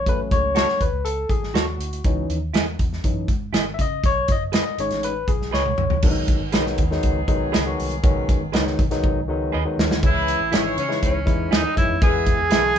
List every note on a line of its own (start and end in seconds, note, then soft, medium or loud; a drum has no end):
0.06 0.27 A1 loud
0.06 0.77 F#3 medium
0.06 0.78 A3 medium
0.06 0.78 C#4 medium
0.06 0.20 B4 loud
0.06 kick loud
0.06 closed hi-hat medium
0.31 0.63 C#2 medium
0.31 0.55 C#5 loud
0.31 kick loud
0.31 closed hi-hat medium
0.55 0.65 F#4 medium
0.55 0.66 A4 loud
0.55 0.82 C#5 loud
0.55 0.66 C#5 loud
0.55 snare loud
0.55 closed hi-hat medium
0.69 snare soft
0.80 0.91 D#2 medium
0.80 1.07 B4 medium
0.80 kick medium
0.80 closed hi-hat medium
0.92 1.24 C#2 medium
1.05 1.31 A4 loud
1.05 closed hi-hat medium
1.29 1.54 A1 medium
1.29 1.53 G#4 medium
1.29 kick medium
1.29 closed hi-hat medium
1.43 snare soft
1.54 1.75 D#2 loud
1.54 1.65 F#4 medium
1.54 2.25 F#4 medium
1.54 1.65 A4 medium
1.54 1.65 C#5 medium
1.54 snare loud
1.54 closed hi-hat loud
1.78 2.00 D2 medium
1.78 closed hi-hat medium
1.93 closed hi-hat medium
2.04 2.26 C#2 loud
2.04 2.38 E3 medium
2.04 2.38 C#4 medium
2.04 2.38 D#4 medium
2.04 kick loud
2.04 closed hi-hat medium
2.29 2.50 D#2 medium
2.29 closed hi-hat medium
2.54 2.75 E2 medium
2.54 2.64 E4 medium
2.54 2.65 G#4 loud
2.54 2.65 D#5 loud
2.54 snare loud
2.54 closed hi-hat medium
2.79 3.00 E2 loud
2.79 kick medium
2.79 closed hi-hat medium
2.93 snare soft
3.04 3.25 F#2 medium
3.04 3.27 E3 medium
3.04 3.27 C#4 soft
3.04 3.27 D#4 medium
3.04 kick medium
3.04 closed hi-hat medium
3.28 3.50 G#2 loud
3.28 kick medium
3.28 closed hi-hat medium
3.52 3.74 G#1 medium
3.52 3.63 E4 medium
3.52 3.64 G#4 loud
3.52 3.64 D#5 loud
3.52 snare loud
3.52 closed hi-hat loud
3.74 3.80 E5 medium
3.79 4.00 C#3 loud
3.79 4.06 D#5 loud
3.79 kick medium
3.79 closed hi-hat medium
4.04 4.25 B1 loud
4.04 4.31 C#5 loud
4.04 kick loud
4.04 closed hi-hat medium
4.28 4.60 F#1 medium
4.28 4.42 D#5 loud
4.28 kick medium
4.28 closed hi-hat medium
4.52 4.63 G#4 loud
4.52 4.63 B4 medium
4.52 4.64 D#5 medium
4.52 4.80 D#5 loud
4.52 snare loud
4.52 closed hi-hat medium
4.78 4.89 G#1 loud
4.78 5.12 G#3 medium
4.78 5.12 C#4 medium
4.78 5.13 D#4 medium
4.78 5.05 C#5 medium
4.78 closed hi-hat medium
4.91 5.22 A1 medium
4.91 snare soft
4.91 closed hi-hat soft
5.03 5.30 B4 loud
5.03 closed hi-hat medium
5.28 5.49 B1 loud
5.28 5.54 G#4 medium
5.28 kick medium
5.28 closed hi-hat medium
5.42 snare soft
5.51 5.75 C#2 loud
5.51 5.62 G#4 medium
5.51 5.63 B4 medium
5.51 6.00 C#5 loud
5.51 5.63 D#5 medium
5.51 snare medium
5.66 high tom medium
5.77 5.99 C2 medium
5.77 mid tom loud
5.90 floor tom medium
6.02 6.35 B1 loud
6.02 6.42 D#3 medium
6.02 9.74 D#3 medium
6.02 6.42 F#3 medium
6.02 6.42 G#3 medium
6.02 9.74 B3 medium
6.02 6.42 B3 medium
6.02 6.10 D4 medium
6.02 9.74 G#4 loud
6.02 kick loud
6.02 crash medium
6.10 6.45 D#4 medium
6.28 kick medium
6.28 closed hi-hat medium
6.41 6.54 G#1 medium
6.52 6.75 B1 medium
6.52 6.82 D#3 medium
6.52 6.83 F#3 medium
6.52 6.83 G#3 medium
6.52 6.83 B3 medium
6.52 6.83 D#4 loud
6.52 6.63 G#4 medium
6.52 6.63 B4 medium
6.52 6.64 D#5 loud
6.52 snare loud
6.52 closed hi-hat medium
6.66 snare soft
6.78 7.00 D#2 medium
6.78 kick medium
6.78 closed hi-hat medium
6.90 7.19 D#3 medium
6.90 7.20 F#3 medium
6.90 7.20 G#3 medium
6.90 7.20 B3 medium
6.90 7.20 D#4 loud
6.90 snare soft
7.03 7.24 C#2 loud
7.03 kick medium
7.03 closed hi-hat medium
7.28 7.49 B1 loud
7.28 7.57 D#3 medium
7.28 7.57 F#3 medium
7.28 7.57 G#3 medium
7.28 7.57 B3 medium
7.28 7.57 D#4 loud
7.28 kick medium
7.28 closed hi-hat medium
7.52 7.75 C#2 medium
7.52 7.63 G#4 loud
7.52 7.63 B4 loud
7.52 7.63 D#5 loud
7.52 snare loud
7.52 closed hi-hat medium
7.66 7.94 D#3 medium
7.66 7.95 F#3 medium
7.66 7.95 G#3 medium
7.66 7.95 B3 medium
7.66 7.95 F#4 loud
7.79 8.00 C2 medium
7.79 open hi-hat medium
7.92 closed hi-hat medium
8.03 8.35 B1 loud
8.03 8.41 D#3 loud
8.03 8.41 F#3 medium
8.03 8.42 G#3 medium
8.03 8.42 B3 medium
8.03 8.42 C#4 loud
8.03 kick loud
8.03 closed hi-hat medium
8.29 kick medium
8.29 closed hi-hat medium
8.41 8.51 G#1 medium
8.52 8.74 C#2 medium
8.52 8.82 D#3 loud
8.52 8.82 F#3 medium
8.52 8.82 G#3 medium
8.52 8.82 B3 medium
8.52 8.83 D#4 loud
8.52 8.63 G#4 medium
8.52 8.63 B4 medium
8.52 8.64 D#5 medium
8.52 snare loud
8.52 closed hi-hat medium
8.67 snare soft
8.79 9.00 B1 loud
8.79 kick loud
8.79 closed hi-hat medium
8.90 9.19 D#3 medium
8.90 9.19 F#3 medium
8.90 9.20 G#3 medium
8.90 9.20 B3 medium
8.90 9.20 D#4 loud
8.90 snare soft
8.90 closed hi-hat medium
9.04 9.28 B1 loud
9.04 kick medium
9.28 9.49 C#2 loud
9.28 9.57 D#3 medium
9.28 9.57 F#3 medium
9.28 9.57 G#3 medium
9.28 9.57 B3 medium
9.28 9.57 D#4 loud
9.52 9.64 D#2 loud
9.52 9.63 G#4 medium
9.52 9.63 B4 medium
9.52 9.64 D#5 medium
9.65 9.94 D#3 medium
9.65 9.94 F#3 medium
9.65 9.94 G#3 medium
9.65 9.94 B3 medium
9.65 9.95 D#4 loud
9.78 9.88 D#2 medium
9.78 snare loud
9.90 10.01 D2 loud
9.90 snare loud
10.02 10.34 C#2 loud
10.02 10.41 E3 medium
10.02 10.41 G#3 medium
10.02 10.50 G#3 loud
10.02 10.41 C#4 medium
10.02 10.50 E4 loud
10.02 10.41 E4 medium
10.02 10.75 E4 loud
10.02 10.50 B4 loud
10.02 10.75 E5 medium
10.02 kick loud
10.02 closed hi-hat medium
10.28 closed hi-hat medium
10.40 10.51 A1 medium
10.52 10.73 G#1 loud
10.52 10.81 E3 medium
10.52 10.81 G#3 medium
10.52 11.24 G#3 loud
10.52 10.81 C#4 medium
10.52 10.81 D#4 medium
10.52 10.62 E4 medium
10.52 10.82 E4 medium
10.52 11.24 E4 loud
10.52 10.63 G#4 medium
10.52 11.24 C#5 loud
10.52 10.63 D#5 medium
10.52 snare loud
10.52 closed hi-hat loud
10.77 10.98 C#3 loud
10.77 10.90 C#4 medium
10.77 10.89 C#5 medium
10.77 closed hi-hat medium
10.88 11.17 E3 medium
10.88 11.18 G#3 medium
10.88 11.18 C#4 medium
10.88 11.18 D#4 medium
10.88 11.18 E4 medium
10.88 snare soft
11.03 11.24 C#2 loud
11.03 11.55 C#4 medium
11.03 11.49 C#5 medium
11.03 kick medium
11.03 closed hi-hat medium
11.26 11.48 E2 medium
11.26 11.64 E3 medium
11.26 11.65 G#3 medium
11.26 11.64 C#4 medium
11.26 11.65 D#4 medium
11.26 11.65 E4 medium
11.26 kick medium
11.26 closed hi-hat medium
11.51 11.63 D#2 medium
11.51 11.87 G#3 loud
11.51 11.77 D#4 loud
11.51 11.61 E4 medium
11.51 11.87 E4 loud
11.51 11.62 G#4 loud
11.51 11.77 D#5 medium
11.51 11.87 D#5 loud
11.51 11.62 D#5 loud
11.51 snare loud
11.51 closed hi-hat medium
11.75 11.87 F#2 loud
11.75 11.96 E3 medium
11.75 11.96 G#3 medium
11.75 11.96 C#4 medium
11.75 11.96 D#4 medium
11.75 12.00 E4 loud
11.75 11.96 E4 medium
11.75 11.99 E5 medium
11.75 kick medium
11.75 closed hi-hat medium
11.90 12.00 F2 medium
12.01 12.33 E2 loud
12.01 12.39 E3 medium
12.01 12.40 G#3 medium
12.01 12.48 B3 loud
12.01 12.40 B3 medium
12.01 12.40 E4 medium
12.01 12.48 G#4 loud
12.01 12.40 G#4 medium
12.01 12.79 G#4 loud
12.01 12.48 E5 loud
12.01 12.79 G#5 medium
12.01 kick loud
12.01 closed hi-hat medium
12.26 kick medium
12.26 closed hi-hat medium
12.39 12.50 E2 medium
12.50 12.73 B1 loud
12.50 12.79 E3 medium
12.50 12.79 G#3 medium
12.50 12.79 B3 medium
12.50 12.71 C#4 medium
12.50 12.79 E4 medium
12.50 12.61 G#4 medium
12.50 12.79 G#4 medium
12.50 12.71 A4 loud
12.50 12.61 B4 medium
12.50 12.71 C#5 loud
12.50 12.62 E5 loud
12.50 snare loud
12.50 closed hi-hat medium